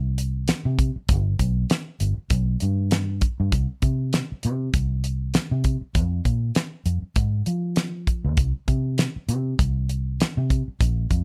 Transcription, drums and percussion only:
0.18 closed hi-hat medium
0.48 snare loud
0.48 closed hi-hat medium
0.79 kick medium
0.79 closed hi-hat medium
1.09 kick loud
1.09 closed hi-hat medium
1.39 kick medium
1.39 closed hi-hat medium
1.70 snare loud
1.70 closed hi-hat medium
2.00 closed hi-hat medium
2.30 kick loud
2.30 closed hi-hat medium
2.60 closed hi-hat medium
2.91 snare loud
2.91 closed hi-hat medium
3.21 kick medium
3.21 closed hi-hat medium
3.52 kick loud
3.52 closed hi-hat medium
3.82 kick medium
3.82 closed hi-hat medium
4.13 snare loud
4.13 closed hi-hat medium
4.43 closed hi-hat medium
4.74 kick loud
4.74 closed hi-hat medium
5.04 closed hi-hat medium
5.34 snare loud
5.34 closed hi-hat medium
5.64 kick medium
5.64 closed hi-hat medium
5.95 kick loud
5.95 closed hi-hat medium
6.25 kick medium
6.25 closed hi-hat medium
6.55 snare medium
6.55 closed hi-hat medium
6.86 closed hi-hat medium
7.16 kick loud
7.16 closed hi-hat medium
7.46 closed hi-hat medium
7.76 snare loud
7.76 closed hi-hat medium
8.07 kick medium
8.07 closed hi-hat medium
8.37 kick loud
8.37 closed hi-hat medium
8.68 kick medium
8.68 closed hi-hat medium
8.98 snare loud
8.98 closed hi-hat medium
9.29 closed hi-hat medium
9.59 kick loud
9.59 closed hi-hat medium
9.89 closed hi-hat medium
10.20 snare loud
10.20 closed hi-hat medium
10.50 kick medium
10.50 closed hi-hat medium
10.81 kick loud
10.81 closed hi-hat medium
11.11 kick medium
11.11 closed hi-hat medium

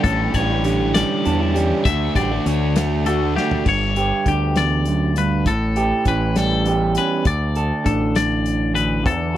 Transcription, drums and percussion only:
0.04 kick loud
0.04 closed hi-hat medium
0.34 kick medium
0.34 closed hi-hat medium
0.64 closed hi-hat medium
0.95 snare loud
0.95 closed hi-hat medium
1.25 closed hi-hat medium
1.56 closed hi-hat medium
1.85 kick loud
1.85 closed hi-hat medium
2.15 kick medium
2.15 closed hi-hat medium
2.46 closed hi-hat medium
2.76 snare loud
2.76 closed hi-hat medium
3.06 closed hi-hat medium
3.37 snare medium
3.51 floor tom medium
3.66 kick loud
3.66 crash medium
3.96 closed hi-hat medium
4.26 kick medium
4.26 closed hi-hat medium
4.56 snare medium
4.56 closed hi-hat medium
4.85 closed hi-hat medium
5.16 closed hi-hat medium
5.46 kick loud
5.46 closed hi-hat medium
5.76 closed hi-hat medium
6.05 kick medium
6.05 closed hi-hat medium
6.36 snare medium
6.36 closed hi-hat medium
6.65 closed hi-hat medium
6.95 closed hi-hat medium
7.25 kick loud
7.25 closed hi-hat medium
7.55 closed hi-hat medium
7.86 kick medium
7.86 closed hi-hat medium
8.15 snare medium
8.15 closed hi-hat medium
8.46 closed hi-hat medium
8.76 closed hi-hat medium
9.06 kick loud
9.06 closed hi-hat medium

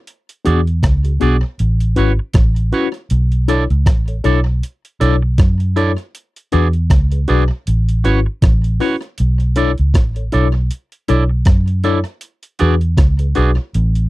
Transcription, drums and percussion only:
0.07 closed hi-hat medium
0.29 closed hi-hat soft
0.45 closed hi-hat medium
0.67 closed hi-hat soft
0.83 kick loud
0.83 cross-stick loud
0.83 closed hi-hat medium
1.05 closed hi-hat medium
1.21 closed hi-hat medium
1.59 closed hi-hat medium
1.80 closed hi-hat soft
1.96 closed hi-hat medium
2.34 kick loud
2.34 cross-stick loud
2.34 closed hi-hat medium
2.56 closed hi-hat soft
2.73 closed hi-hat medium
2.94 closed hi-hat soft
3.10 closed hi-hat medium
3.32 closed hi-hat soft
3.48 closed hi-hat medium
3.70 closed hi-hat soft
3.86 kick loud
3.86 cross-stick loud
3.86 closed hi-hat medium
4.08 closed hi-hat medium
4.24 closed hi-hat medium
4.63 closed hi-hat medium
4.85 closed hi-hat soft
5.01 closed hi-hat medium
5.38 kick loud
5.38 cross-stick loud
5.38 closed hi-hat medium
5.60 closed hi-hat soft
5.77 closed hi-hat medium
5.98 closed hi-hat soft
6.15 closed hi-hat medium
6.36 closed hi-hat soft
6.52 closed hi-hat medium
6.73 closed hi-hat soft
6.90 kick loud
6.90 cross-stick loud
6.90 closed hi-hat medium
7.12 closed hi-hat medium
7.28 closed hi-hat medium
7.67 closed hi-hat medium
7.89 closed hi-hat soft
8.05 closed hi-hat medium
8.42 kick loud
8.42 cross-stick loud
8.42 closed hi-hat medium
8.64 closed hi-hat soft
8.80 cross-stick medium
8.80 open hi-hat medium
9.02 closed hi-hat soft
9.18 closed hi-hat medium
9.40 closed hi-hat soft
9.56 closed hi-hat medium
9.78 closed hi-hat soft
9.94 kick loud
9.94 cross-stick loud
9.94 closed hi-hat medium
10.16 closed hi-hat medium
10.32 closed hi-hat medium
10.71 closed hi-hat medium
10.92 closed hi-hat soft
11.08 closed hi-hat medium
11.45 kick loud
11.45 cross-stick loud
11.45 closed hi-hat medium
11.68 closed hi-hat medium
11.84 closed hi-hat medium
12.05 closed hi-hat soft
12.21 closed hi-hat medium
12.43 closed hi-hat soft
12.59 closed hi-hat medium
12.81 closed hi-hat soft
12.97 kick loud
12.97 cross-stick loud
12.97 closed hi-hat medium
13.19 closed hi-hat medium
13.35 closed hi-hat medium
13.74 closed hi-hat medium
13.95 closed hi-hat soft

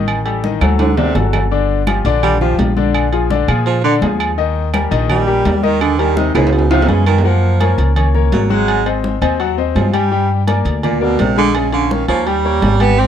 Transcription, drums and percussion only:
0.08 high conga soft
0.08 low agogo loud
0.08 claves medium
0.26 high conga soft
0.26 low agogo medium
0.44 high conga loud
0.44 low timbale medium
0.61 high conga loud
0.61 high timbale medium
0.61 low agogo loud
0.61 claves medium
0.79 high conga medium
0.79 high timbale medium
0.79 low agogo medium
0.97 low conga loud
0.97 low timbale loud
1.15 low conga loud
1.15 low timbale medium
1.15 low agogo medium
1.33 low conga medium
1.33 low timbale medium
1.33 low agogo loud
1.33 claves medium
1.52 high conga soft
1.69 high conga soft
1.87 high conga loud
1.87 low timbale medium
1.87 low agogo loud
1.87 claves medium
2.05 high conga soft
2.05 low agogo medium
2.23 high conga soft
2.23 low conga medium
2.23 low agogo loud
2.23 claves medium
2.41 high conga soft
2.41 low conga medium
2.59 high conga loud
2.59 low timbale medium
2.59 low agogo medium
2.77 high conga medium
2.94 high conga soft
2.94 low agogo loud
2.94 claves medium
3.12 high conga soft
3.12 low agogo medium
3.30 high conga medium
3.30 low timbale medium
3.48 high conga soft
3.48 low agogo loud
3.48 claves medium
3.66 high conga soft
3.66 low agogo medium
3.84 high conga soft
4.02 high conga medium
4.02 low timbale medium
4.02 low agogo medium
4.20 low agogo loud
4.20 claves medium
4.38 high conga soft
4.56 high conga soft
4.74 high conga loud
4.74 low timbale medium
4.74 low agogo loud
4.74 claves medium
4.92 high conga soft
4.92 low agogo medium
5.09 high conga soft
5.09 low conga medium
5.09 low agogo loud
5.09 claves medium
5.27 high conga soft
5.45 high conga loud
5.45 low timbale medium
5.45 low agogo medium
5.64 high conga medium
5.81 low agogo loud
5.81 claves medium
5.99 high conga soft
5.99 low agogo medium
6.17 high conga medium
6.17 low timbale medium
6.35 high timbale medium
6.35 low agogo loud
6.35 claves medium
6.47 high timbale loud
6.53 high conga soft
6.53 low agogo medium
6.59 high timbale medium
6.71 high conga soft
6.71 high timbale loud
6.82 low timbale medium
6.88 high conga loud
6.88 low agogo loud
7.06 high conga medium
7.06 low agogo loud
7.06 claves medium
7.18 low timbale medium
7.25 high conga soft
7.43 high conga soft
7.61 high conga loud
7.61 low timbale medium
7.61 low agogo loud
7.78 high conga soft
7.78 low agogo medium
7.96 high conga soft
7.96 low conga medium
7.96 low agogo loud
8.15 high conga soft
8.15 low conga medium
8.32 high conga loud
8.32 low timbale medium
8.32 low agogo medium
8.50 high conga medium
8.68 high conga soft
8.68 low agogo loud
8.86 high conga soft
8.86 low agogo medium
9.04 high conga medium
9.04 low timbale medium
9.22 high conga soft
9.22 low agogo loud
9.40 high conga soft
9.40 low agogo medium
9.58 high conga soft
9.76 high conga loud
9.76 low timbale medium
9.76 low agogo medium
9.94 high conga medium
9.94 low agogo loud
10.12 high conga soft
10.30 high conga soft
10.47 high conga medium
10.47 low timbale medium
10.47 low agogo loud
10.66 low agogo medium
10.83 high conga soft
10.83 low conga medium
10.83 low agogo medium
11.02 high conga soft
11.19 high conga medium
11.19 low timbale medium
11.19 low agogo medium
11.38 high conga medium
11.55 low agogo loud
11.72 high conga soft
11.72 low agogo medium
11.90 high conga medium
11.90 low timbale medium
12.08 low agogo loud
12.27 high conga soft
12.27 low agogo medium
12.45 high conga soft
12.62 high conga loud
12.62 low timbale medium
12.62 low agogo medium
12.80 high conga medium
12.80 low agogo loud

